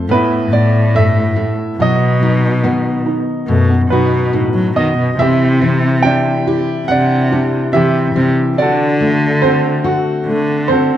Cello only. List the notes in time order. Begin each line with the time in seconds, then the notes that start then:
0.10 A2
0.52 A2
1.78 B2
3.48 B2
3.91 B2
4.55 F#3
4.77 D#3
4.98 B2
5.19 C3
6.88 C3
7.73 C3
8.14 C3
8.58 D3
10.27 D3